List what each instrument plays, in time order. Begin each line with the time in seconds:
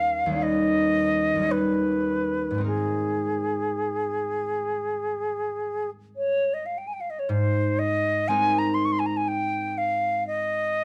Already playing: harp D#2 G3 C#4 D#4 B4, flute F5
0.26 harp D#2 G3
0.32 harp C#4 D#4
0.40 harp B4, flute D#5
1.35 harp D#2 G3
1.42 harp C#4 D#4
1.49 harp B4, flute B4
2.51 harp G#2 G#3
2.58 harp C4 D#4
2.64 flute G#4, harp A#4
6.16 flute C#5
6.54 flute D#5
6.66 flute F5
6.78 flute G5
6.87 flute G#5
6.93 flute G5
7.01 flute F5
7.10 flute D#5
7.19 flute C#5
7.29 harp G#2, flute C5
7.79 flute D#5
8.28 harp G#3 C4 D#4 A#4, flute G#5
8.58 flute A#5
8.74 flute C6
8.85 flute C#6
8.92 flute C6
8.99 flute G#5
9.06 flute A#5
9.17 flute G#5
9.28 flute G5
9.78 flute F5
10.27 flute D#5